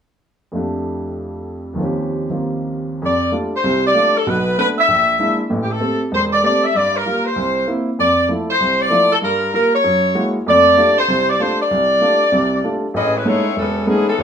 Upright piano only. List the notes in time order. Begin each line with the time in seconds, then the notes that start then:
0.52 F2 F3 A3 D4
0.57 G4
1.74 D#2 D#3 F3
1.80 C4 C#4
1.84 G4
2.30 D#3 A#3 C4 F4
3.02 F2
3.32 G3 A3 D4 F4
3.64 C2 C3
3.94 G3 A3 D4 F4
4.27 B1 B2
4.58 A3 B3 D4
4.88 A#1
5.19 G#3 A#3 D4 E4
5.50 A1 A2
5.80 A3 C4 G4
6.12 E1
6.43 A3 C4 G4
6.75 G2
7.05 G3 A#3 F4
7.36 C2
7.67 A#3 C4 E4
7.99 F2
8.29 F3 A3 E4
8.60 C2
8.90 F3 A3 E4
9.22 G2
9.53 G3 A#3 F4
9.84 F#2
10.15 G#3 A#3 E4 F#4
10.47 F2 A3
10.77 G3 A3 D4 F4
11.08 C2 C3
11.40 G3 A3 D4 F4
11.71 C2
12.01 G3 A3 D4 F4
12.32 C2 C3
12.64 G3 A3 D4 F4
12.94 A1
13.25 G#3 A3 B3 C#4 D#4
13.56 E1
13.87 G#3 A3 B3 C#4 D#4
14.18 D#2